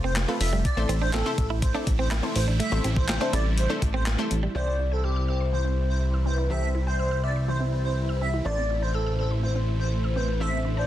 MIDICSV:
0, 0, Header, 1, 10, 480
1, 0, Start_track
1, 0, Key_signature, 0, "major"
1, 0, Tempo, 487805
1, 640, Time_signature, 4, 2, 24, 8
1, 10694, End_track
2, 0, Start_track
2, 0, Title_t, "Digital synth lead"
2, 0, Program_c, 0, 84
2, 43, Note_on_c, 0, 72, 85
2, 128, Note_off_c, 0, 72, 0
2, 404, Note_on_c, 0, 76, 83
2, 489, Note_off_c, 0, 76, 0
2, 640, Note_on_c, 0, 74, 106
2, 813, Note_off_c, 0, 74, 0
2, 999, Note_on_c, 0, 72, 86
2, 1086, Note_off_c, 0, 72, 0
2, 1117, Note_on_c, 0, 69, 78
2, 1291, Note_off_c, 0, 69, 0
2, 1354, Note_on_c, 0, 69, 78
2, 1443, Note_off_c, 0, 69, 0
2, 1596, Note_on_c, 0, 72, 86
2, 1684, Note_off_c, 0, 72, 0
2, 1955, Note_on_c, 0, 72, 76
2, 2043, Note_off_c, 0, 72, 0
2, 2317, Note_on_c, 0, 72, 82
2, 2404, Note_off_c, 0, 72, 0
2, 2556, Note_on_c, 0, 76, 107
2, 2731, Note_off_c, 0, 76, 0
2, 2919, Note_on_c, 0, 72, 81
2, 3006, Note_off_c, 0, 72, 0
2, 3041, Note_on_c, 0, 72, 82
2, 3213, Note_off_c, 0, 72, 0
2, 3279, Note_on_c, 0, 74, 85
2, 3366, Note_off_c, 0, 74, 0
2, 3522, Note_on_c, 0, 72, 82
2, 3607, Note_off_c, 0, 72, 0
2, 3883, Note_on_c, 0, 72, 78
2, 3968, Note_off_c, 0, 72, 0
2, 4481, Note_on_c, 0, 72, 102
2, 4654, Note_off_c, 0, 72, 0
2, 4841, Note_on_c, 0, 69, 69
2, 4927, Note_off_c, 0, 69, 0
2, 4960, Note_on_c, 0, 67, 79
2, 5133, Note_off_c, 0, 67, 0
2, 5202, Note_on_c, 0, 67, 74
2, 5288, Note_off_c, 0, 67, 0
2, 5440, Note_on_c, 0, 72, 77
2, 5527, Note_off_c, 0, 72, 0
2, 5800, Note_on_c, 0, 72, 64
2, 5886, Note_off_c, 0, 72, 0
2, 6161, Note_on_c, 0, 72, 78
2, 6247, Note_off_c, 0, 72, 0
2, 6402, Note_on_c, 0, 76, 97
2, 6574, Note_off_c, 0, 76, 0
2, 6760, Note_on_c, 0, 72, 88
2, 6847, Note_off_c, 0, 72, 0
2, 6880, Note_on_c, 0, 72, 80
2, 7053, Note_off_c, 0, 72, 0
2, 7119, Note_on_c, 0, 74, 80
2, 7206, Note_off_c, 0, 74, 0
2, 7360, Note_on_c, 0, 72, 78
2, 7447, Note_off_c, 0, 72, 0
2, 7719, Note_on_c, 0, 72, 78
2, 7806, Note_off_c, 0, 72, 0
2, 8083, Note_on_c, 0, 76, 78
2, 8168, Note_off_c, 0, 76, 0
2, 8320, Note_on_c, 0, 74, 101
2, 8493, Note_off_c, 0, 74, 0
2, 8680, Note_on_c, 0, 72, 76
2, 8766, Note_off_c, 0, 72, 0
2, 8800, Note_on_c, 0, 69, 73
2, 8973, Note_off_c, 0, 69, 0
2, 9040, Note_on_c, 0, 69, 74
2, 9126, Note_off_c, 0, 69, 0
2, 9281, Note_on_c, 0, 72, 80
2, 9367, Note_off_c, 0, 72, 0
2, 9640, Note_on_c, 0, 72, 75
2, 9727, Note_off_c, 0, 72, 0
2, 10000, Note_on_c, 0, 72, 78
2, 10086, Note_off_c, 0, 72, 0
2, 10240, Note_on_c, 0, 76, 101
2, 10413, Note_off_c, 0, 76, 0
2, 10602, Note_on_c, 0, 72, 77
2, 10688, Note_off_c, 0, 72, 0
2, 10694, End_track
3, 0, Start_track
3, 0, Title_t, "Soft synth lead"
3, 0, Program_c, 1, 80
3, 4483, Note_on_c, 1, 74, 96
3, 4842, Note_on_c, 1, 72, 86
3, 4857, Note_off_c, 1, 74, 0
3, 5197, Note_off_c, 1, 72, 0
3, 5202, Note_on_c, 1, 72, 90
3, 6162, Note_on_c, 1, 71, 92
3, 6177, Note_off_c, 1, 72, 0
3, 6399, Note_on_c, 1, 72, 102
3, 6414, Note_off_c, 1, 71, 0
3, 6755, Note_off_c, 1, 72, 0
3, 6760, Note_on_c, 1, 72, 97
3, 7095, Note_off_c, 1, 72, 0
3, 7121, Note_on_c, 1, 76, 100
3, 7361, Note_on_c, 1, 72, 93
3, 7375, Note_off_c, 1, 76, 0
3, 8080, Note_off_c, 1, 72, 0
3, 8320, Note_on_c, 1, 74, 95
3, 8680, Note_on_c, 1, 72, 86
3, 8695, Note_off_c, 1, 74, 0
3, 9032, Note_off_c, 1, 72, 0
3, 9038, Note_on_c, 1, 72, 91
3, 10000, Note_on_c, 1, 71, 86
3, 10015, Note_off_c, 1, 72, 0
3, 10239, Note_on_c, 1, 72, 98
3, 10253, Note_off_c, 1, 71, 0
3, 10598, Note_on_c, 1, 74, 93
3, 10613, Note_off_c, 1, 72, 0
3, 10694, Note_off_c, 1, 74, 0
3, 10694, End_track
4, 0, Start_track
4, 0, Title_t, "Synth arpeggio sound"
4, 0, Program_c, 2, 84
4, 4478, Note_on_c, 2, 52, 85
4, 4587, Note_off_c, 2, 52, 0
4, 4599, Note_on_c, 2, 60, 72
4, 4708, Note_off_c, 2, 60, 0
4, 4716, Note_on_c, 2, 64, 81
4, 4826, Note_off_c, 2, 64, 0
4, 4837, Note_on_c, 2, 79, 85
4, 4947, Note_off_c, 2, 79, 0
4, 4957, Note_on_c, 2, 88, 97
4, 5067, Note_off_c, 2, 88, 0
4, 5078, Note_on_c, 2, 88, 87
4, 5187, Note_off_c, 2, 88, 0
4, 5198, Note_on_c, 2, 88, 94
4, 5307, Note_off_c, 2, 88, 0
4, 5317, Note_on_c, 2, 84, 83
4, 5427, Note_off_c, 2, 84, 0
4, 5437, Note_on_c, 2, 52, 84
4, 5547, Note_off_c, 2, 52, 0
4, 5557, Note_on_c, 2, 60, 74
4, 5666, Note_off_c, 2, 60, 0
4, 6039, Note_on_c, 2, 88, 92
4, 6147, Note_off_c, 2, 88, 0
4, 6156, Note_on_c, 2, 60, 80
4, 6266, Note_off_c, 2, 60, 0
4, 6277, Note_on_c, 2, 64, 82
4, 6386, Note_off_c, 2, 64, 0
4, 6399, Note_on_c, 2, 52, 86
4, 6508, Note_off_c, 2, 52, 0
4, 6519, Note_on_c, 2, 60, 71
4, 6628, Note_off_c, 2, 60, 0
4, 6640, Note_on_c, 2, 64, 85
4, 6748, Note_off_c, 2, 64, 0
4, 6760, Note_on_c, 2, 79, 84
4, 6868, Note_off_c, 2, 79, 0
4, 6880, Note_on_c, 2, 88, 94
4, 6988, Note_off_c, 2, 88, 0
4, 6999, Note_on_c, 2, 88, 91
4, 7108, Note_off_c, 2, 88, 0
4, 7120, Note_on_c, 2, 88, 91
4, 7228, Note_off_c, 2, 88, 0
4, 7240, Note_on_c, 2, 84, 82
4, 7348, Note_off_c, 2, 84, 0
4, 7361, Note_on_c, 2, 52, 89
4, 7469, Note_off_c, 2, 52, 0
4, 7480, Note_on_c, 2, 60, 76
4, 7588, Note_off_c, 2, 60, 0
4, 7960, Note_on_c, 2, 88, 89
4, 8068, Note_off_c, 2, 88, 0
4, 8083, Note_on_c, 2, 60, 81
4, 8190, Note_off_c, 2, 60, 0
4, 8203, Note_on_c, 2, 64, 79
4, 8310, Note_off_c, 2, 64, 0
4, 8322, Note_on_c, 2, 52, 85
4, 8429, Note_off_c, 2, 52, 0
4, 8442, Note_on_c, 2, 60, 69
4, 8549, Note_off_c, 2, 60, 0
4, 8562, Note_on_c, 2, 64, 81
4, 8669, Note_off_c, 2, 64, 0
4, 8682, Note_on_c, 2, 81, 84
4, 8789, Note_off_c, 2, 81, 0
4, 8800, Note_on_c, 2, 88, 102
4, 8908, Note_off_c, 2, 88, 0
4, 8920, Note_on_c, 2, 88, 87
4, 9028, Note_off_c, 2, 88, 0
4, 9040, Note_on_c, 2, 88, 86
4, 9148, Note_off_c, 2, 88, 0
4, 9159, Note_on_c, 2, 84, 86
4, 9268, Note_off_c, 2, 84, 0
4, 9280, Note_on_c, 2, 52, 88
4, 9388, Note_off_c, 2, 52, 0
4, 9399, Note_on_c, 2, 60, 76
4, 9508, Note_off_c, 2, 60, 0
4, 9879, Note_on_c, 2, 88, 89
4, 9987, Note_off_c, 2, 88, 0
4, 9998, Note_on_c, 2, 60, 77
4, 10107, Note_off_c, 2, 60, 0
4, 10118, Note_on_c, 2, 64, 79
4, 10227, Note_off_c, 2, 64, 0
4, 10237, Note_on_c, 2, 52, 85
4, 10346, Note_off_c, 2, 52, 0
4, 10355, Note_on_c, 2, 60, 76
4, 10466, Note_off_c, 2, 60, 0
4, 10478, Note_on_c, 2, 64, 82
4, 10587, Note_off_c, 2, 64, 0
4, 10598, Note_on_c, 2, 81, 86
4, 10694, Note_off_c, 2, 81, 0
4, 10694, End_track
5, 0, Start_track
5, 0, Title_t, "Synth pluck"
5, 0, Program_c, 3, 84
5, 276, Note_on_c, 3, 57, 77
5, 276, Note_on_c, 3, 60, 72
5, 278, Note_on_c, 3, 65, 70
5, 278, Note_on_c, 3, 69, 71
5, 281, Note_on_c, 3, 71, 87
5, 545, Note_off_c, 3, 57, 0
5, 545, Note_off_c, 3, 60, 0
5, 546, Note_off_c, 3, 65, 0
5, 546, Note_off_c, 3, 69, 0
5, 548, Note_off_c, 3, 71, 0
5, 756, Note_on_c, 3, 57, 82
5, 758, Note_on_c, 3, 60, 77
5, 759, Note_on_c, 3, 64, 74
5, 760, Note_on_c, 3, 69, 77
5, 762, Note_on_c, 3, 72, 93
5, 1025, Note_off_c, 3, 57, 0
5, 1026, Note_off_c, 3, 60, 0
5, 1026, Note_off_c, 3, 64, 0
5, 1027, Note_off_c, 3, 69, 0
5, 1028, Note_off_c, 3, 72, 0
5, 1237, Note_on_c, 3, 57, 81
5, 1237, Note_on_c, 3, 60, 80
5, 1240, Note_on_c, 3, 64, 78
5, 1241, Note_on_c, 3, 72, 96
5, 1242, Note_on_c, 3, 69, 75
5, 1505, Note_off_c, 3, 60, 0
5, 1506, Note_off_c, 3, 57, 0
5, 1507, Note_off_c, 3, 64, 0
5, 1507, Note_off_c, 3, 72, 0
5, 1508, Note_off_c, 3, 69, 0
5, 1715, Note_on_c, 3, 60, 73
5, 1716, Note_on_c, 3, 57, 84
5, 1717, Note_on_c, 3, 64, 76
5, 1719, Note_on_c, 3, 69, 77
5, 1720, Note_on_c, 3, 74, 92
5, 1985, Note_off_c, 3, 57, 0
5, 1985, Note_off_c, 3, 60, 0
5, 1986, Note_off_c, 3, 64, 0
5, 1986, Note_off_c, 3, 69, 0
5, 1987, Note_off_c, 3, 74, 0
5, 2193, Note_on_c, 3, 57, 76
5, 2194, Note_on_c, 3, 60, 68
5, 2195, Note_on_c, 3, 64, 69
5, 2196, Note_on_c, 3, 69, 66
5, 2198, Note_on_c, 3, 72, 86
5, 2464, Note_off_c, 3, 57, 0
5, 2464, Note_off_c, 3, 60, 0
5, 2464, Note_off_c, 3, 64, 0
5, 2465, Note_off_c, 3, 69, 0
5, 2466, Note_off_c, 3, 72, 0
5, 2673, Note_on_c, 3, 57, 86
5, 2673, Note_on_c, 3, 60, 80
5, 2675, Note_on_c, 3, 64, 77
5, 2677, Note_on_c, 3, 69, 75
5, 2678, Note_on_c, 3, 72, 94
5, 2943, Note_off_c, 3, 57, 0
5, 2944, Note_off_c, 3, 60, 0
5, 2945, Note_off_c, 3, 64, 0
5, 2946, Note_off_c, 3, 69, 0
5, 2946, Note_off_c, 3, 72, 0
5, 3154, Note_on_c, 3, 57, 89
5, 3155, Note_on_c, 3, 60, 81
5, 3157, Note_on_c, 3, 64, 74
5, 3157, Note_on_c, 3, 69, 80
5, 3158, Note_on_c, 3, 72, 96
5, 3424, Note_off_c, 3, 57, 0
5, 3425, Note_off_c, 3, 60, 0
5, 3425, Note_off_c, 3, 64, 0
5, 3426, Note_off_c, 3, 69, 0
5, 3426, Note_off_c, 3, 72, 0
5, 3636, Note_on_c, 3, 57, 86
5, 3638, Note_on_c, 3, 60, 73
5, 3639, Note_on_c, 3, 64, 78
5, 3641, Note_on_c, 3, 69, 72
5, 3642, Note_on_c, 3, 72, 93
5, 3905, Note_off_c, 3, 57, 0
5, 3906, Note_off_c, 3, 60, 0
5, 3906, Note_off_c, 3, 64, 0
5, 3907, Note_off_c, 3, 69, 0
5, 3908, Note_off_c, 3, 72, 0
5, 4116, Note_on_c, 3, 57, 88
5, 4118, Note_on_c, 3, 60, 81
5, 4119, Note_on_c, 3, 64, 80
5, 4120, Note_on_c, 3, 69, 84
5, 4122, Note_on_c, 3, 72, 96
5, 4385, Note_off_c, 3, 57, 0
5, 4386, Note_off_c, 3, 60, 0
5, 4387, Note_off_c, 3, 64, 0
5, 4387, Note_off_c, 3, 69, 0
5, 4388, Note_off_c, 3, 72, 0
5, 4476, Note_on_c, 3, 60, 63
5, 4481, Note_on_c, 3, 64, 57
5, 4483, Note_on_c, 3, 67, 57
5, 4487, Note_on_c, 3, 72, 67
5, 6359, Note_off_c, 3, 60, 0
5, 6362, Note_off_c, 3, 64, 0
5, 6363, Note_off_c, 3, 67, 0
5, 6365, Note_off_c, 3, 72, 0
5, 6393, Note_on_c, 3, 60, 63
5, 6397, Note_on_c, 3, 64, 59
5, 6400, Note_on_c, 3, 67, 57
5, 6403, Note_on_c, 3, 69, 68
5, 8278, Note_off_c, 3, 60, 0
5, 8280, Note_off_c, 3, 64, 0
5, 8281, Note_off_c, 3, 67, 0
5, 8283, Note_off_c, 3, 69, 0
5, 8314, Note_on_c, 3, 60, 61
5, 8316, Note_on_c, 3, 64, 58
5, 8321, Note_on_c, 3, 69, 59
5, 8323, Note_on_c, 3, 72, 68
5, 10198, Note_off_c, 3, 60, 0
5, 10199, Note_off_c, 3, 64, 0
5, 10202, Note_off_c, 3, 69, 0
5, 10203, Note_off_c, 3, 72, 0
5, 10236, Note_on_c, 3, 60, 63
5, 10238, Note_on_c, 3, 64, 60
5, 10242, Note_on_c, 3, 69, 58
5, 10245, Note_on_c, 3, 72, 71
5, 10694, Note_off_c, 3, 60, 0
5, 10694, Note_off_c, 3, 64, 0
5, 10694, Note_off_c, 3, 69, 0
5, 10694, Note_off_c, 3, 72, 0
5, 10694, End_track
6, 0, Start_track
6, 0, Title_t, "Clean electric guitar"
6, 0, Program_c, 4, 27
6, 41, Note_on_c, 4, 60, 87
6, 132, Note_off_c, 4, 60, 0
6, 281, Note_on_c, 4, 57, 75
6, 372, Note_off_c, 4, 57, 0
6, 519, Note_on_c, 4, 55, 80
6, 611, Note_off_c, 4, 55, 0
6, 876, Note_on_c, 4, 60, 78
6, 969, Note_off_c, 4, 60, 0
6, 1000, Note_on_c, 4, 62, 81
6, 1091, Note_off_c, 4, 62, 0
6, 1118, Note_on_c, 4, 60, 92
6, 1211, Note_off_c, 4, 60, 0
6, 1478, Note_on_c, 4, 64, 77
6, 1570, Note_off_c, 4, 64, 0
6, 1718, Note_on_c, 4, 62, 86
6, 1810, Note_off_c, 4, 62, 0
6, 1958, Note_on_c, 4, 60, 79
6, 2051, Note_off_c, 4, 60, 0
6, 2078, Note_on_c, 4, 64, 82
6, 2170, Note_off_c, 4, 64, 0
6, 2438, Note_on_c, 4, 62, 77
6, 2530, Note_off_c, 4, 62, 0
6, 2555, Note_on_c, 4, 57, 93
6, 2649, Note_off_c, 4, 57, 0
6, 2798, Note_on_c, 4, 60, 81
6, 2891, Note_off_c, 4, 60, 0
6, 3160, Note_on_c, 4, 62, 84
6, 3252, Note_off_c, 4, 62, 0
6, 3279, Note_on_c, 4, 64, 83
6, 3371, Note_off_c, 4, 64, 0
6, 3638, Note_on_c, 4, 62, 77
6, 3730, Note_off_c, 4, 62, 0
6, 3877, Note_on_c, 4, 60, 90
6, 3970, Note_off_c, 4, 60, 0
6, 4120, Note_on_c, 4, 57, 76
6, 4212, Note_off_c, 4, 57, 0
6, 4359, Note_on_c, 4, 55, 76
6, 4451, Note_off_c, 4, 55, 0
6, 10694, End_track
7, 0, Start_track
7, 0, Title_t, "Supersaw synth"
7, 0, Program_c, 5, 81
7, 0, Note_on_c, 5, 48, 81
7, 0, Note_on_c, 5, 53, 74
7, 0, Note_on_c, 5, 57, 76
7, 0, Note_on_c, 5, 65, 89
7, 599, Note_off_c, 5, 65, 0
7, 600, Note_off_c, 5, 53, 0
7, 601, Note_off_c, 5, 48, 0
7, 639, Note_on_c, 5, 48, 81
7, 639, Note_on_c, 5, 52, 72
7, 639, Note_on_c, 5, 64, 91
7, 2522, Note_off_c, 5, 57, 0
7, 2560, Note_on_c, 5, 55, 76
7, 4441, Note_off_c, 5, 48, 0
7, 4441, Note_off_c, 5, 52, 0
7, 4441, Note_off_c, 5, 64, 0
7, 4461, Note_off_c, 5, 55, 0
7, 4481, Note_on_c, 5, 48, 74
7, 4481, Note_on_c, 5, 52, 67
7, 4481, Note_on_c, 5, 64, 83
7, 4482, Note_on_c, 5, 55, 70
7, 8282, Note_off_c, 5, 55, 0
7, 8322, Note_on_c, 5, 57, 68
7, 10201, Note_off_c, 5, 64, 0
7, 10239, Note_on_c, 5, 62, 85
7, 10694, Note_off_c, 5, 48, 0
7, 10694, Note_off_c, 5, 52, 0
7, 10694, Note_off_c, 5, 57, 0
7, 10694, Note_off_c, 5, 62, 0
7, 10694, End_track
8, 0, Start_track
8, 0, Title_t, "Analog synth bass"
8, 0, Program_c, 6, 38
8, 0, Note_on_c, 6, 29, 95
8, 257, Note_off_c, 6, 29, 0
8, 399, Note_on_c, 6, 29, 97
8, 652, Note_off_c, 6, 29, 0
8, 757, Note_on_c, 6, 33, 98
8, 842, Note_off_c, 6, 33, 0
8, 875, Note_on_c, 6, 33, 101
8, 1213, Note_off_c, 6, 33, 0
8, 1358, Note_on_c, 6, 33, 98
8, 1696, Note_off_c, 6, 33, 0
8, 1840, Note_on_c, 6, 33, 90
8, 2177, Note_off_c, 6, 33, 0
8, 2316, Note_on_c, 6, 33, 100
8, 2570, Note_off_c, 6, 33, 0
8, 2677, Note_on_c, 6, 33, 99
8, 2762, Note_off_c, 6, 33, 0
8, 2799, Note_on_c, 6, 33, 100
8, 3136, Note_off_c, 6, 33, 0
8, 3278, Note_on_c, 6, 33, 99
8, 3616, Note_off_c, 6, 33, 0
8, 3759, Note_on_c, 6, 33, 95
8, 4096, Note_off_c, 6, 33, 0
8, 4240, Note_on_c, 6, 33, 99
8, 4409, Note_off_c, 6, 33, 0
8, 4479, Note_on_c, 6, 36, 83
8, 8280, Note_off_c, 6, 36, 0
8, 8320, Note_on_c, 6, 33, 83
8, 10694, Note_off_c, 6, 33, 0
8, 10694, End_track
9, 0, Start_track
9, 0, Title_t, "Muted clean electric guitar strokes"
9, 401, Note_on_c, 9, 29, 50
9, 499, Note_off_c, 9, 29, 0
9, 759, Note_on_c, 9, 29, 48
9, 857, Note_off_c, 9, 29, 0
9, 1240, Note_on_c, 9, 29, 47
9, 1339, Note_off_c, 9, 29, 0
9, 1839, Note_on_c, 9, 29, 51
9, 1937, Note_off_c, 9, 29, 0
9, 2196, Note_on_c, 9, 29, 49
9, 2294, Note_off_c, 9, 29, 0
9, 2678, Note_on_c, 9, 29, 49
9, 2777, Note_off_c, 9, 29, 0
9, 3042, Note_on_c, 9, 29, 47
9, 3140, Note_off_c, 9, 29, 0
9, 3758, Note_on_c, 9, 29, 46
9, 3856, Note_off_c, 9, 29, 0
9, 4240, Note_on_c, 9, 29, 49
9, 4338, Note_off_c, 9, 29, 0
9, 10694, End_track
10, 0, Start_track
10, 0, Title_t, "Drums"
10, 158, Note_on_c, 9, 39, 117
10, 158, Note_on_c, 9, 42, 90
10, 165, Note_on_c, 9, 38, 94
10, 256, Note_off_c, 9, 39, 0
10, 257, Note_off_c, 9, 42, 0
10, 263, Note_off_c, 9, 38, 0
10, 400, Note_on_c, 9, 46, 88
10, 498, Note_off_c, 9, 46, 0
10, 639, Note_on_c, 9, 42, 101
10, 640, Note_on_c, 9, 36, 120
10, 737, Note_off_c, 9, 42, 0
10, 738, Note_off_c, 9, 36, 0
10, 879, Note_on_c, 9, 42, 67
10, 977, Note_off_c, 9, 42, 0
10, 1116, Note_on_c, 9, 39, 117
10, 1116, Note_on_c, 9, 42, 99
10, 1123, Note_on_c, 9, 38, 98
10, 1214, Note_off_c, 9, 39, 0
10, 1214, Note_off_c, 9, 42, 0
10, 1221, Note_off_c, 9, 38, 0
10, 1358, Note_on_c, 9, 36, 105
10, 1358, Note_on_c, 9, 42, 82
10, 1457, Note_off_c, 9, 36, 0
10, 1457, Note_off_c, 9, 42, 0
10, 1597, Note_on_c, 9, 36, 107
10, 1598, Note_on_c, 9, 42, 100
10, 1696, Note_off_c, 9, 36, 0
10, 1696, Note_off_c, 9, 42, 0
10, 1839, Note_on_c, 9, 36, 91
10, 1840, Note_on_c, 9, 42, 90
10, 1938, Note_off_c, 9, 36, 0
10, 1939, Note_off_c, 9, 42, 0
10, 2077, Note_on_c, 9, 39, 116
10, 2078, Note_on_c, 9, 42, 88
10, 2084, Note_on_c, 9, 38, 96
10, 2176, Note_off_c, 9, 39, 0
10, 2176, Note_off_c, 9, 42, 0
10, 2183, Note_off_c, 9, 38, 0
10, 2318, Note_on_c, 9, 46, 90
10, 2417, Note_off_c, 9, 46, 0
10, 2559, Note_on_c, 9, 42, 102
10, 2657, Note_off_c, 9, 42, 0
10, 2798, Note_on_c, 9, 42, 70
10, 2897, Note_off_c, 9, 42, 0
10, 2917, Note_on_c, 9, 36, 91
10, 3016, Note_off_c, 9, 36, 0
10, 3036, Note_on_c, 9, 42, 96
10, 3037, Note_on_c, 9, 39, 121
10, 3044, Note_on_c, 9, 38, 97
10, 3135, Note_off_c, 9, 39, 0
10, 3135, Note_off_c, 9, 42, 0
10, 3142, Note_off_c, 9, 38, 0
10, 3280, Note_on_c, 9, 42, 86
10, 3379, Note_off_c, 9, 42, 0
10, 3519, Note_on_c, 9, 42, 99
10, 3617, Note_off_c, 9, 42, 0
10, 3760, Note_on_c, 9, 36, 91
10, 3760, Note_on_c, 9, 42, 86
10, 3858, Note_off_c, 9, 36, 0
10, 3859, Note_off_c, 9, 42, 0
10, 3998, Note_on_c, 9, 39, 109
10, 3999, Note_on_c, 9, 42, 83
10, 4005, Note_on_c, 9, 38, 93
10, 4097, Note_off_c, 9, 39, 0
10, 4097, Note_off_c, 9, 42, 0
10, 4104, Note_off_c, 9, 38, 0
10, 4240, Note_on_c, 9, 42, 90
10, 4338, Note_off_c, 9, 42, 0
10, 10694, End_track
0, 0, End_of_file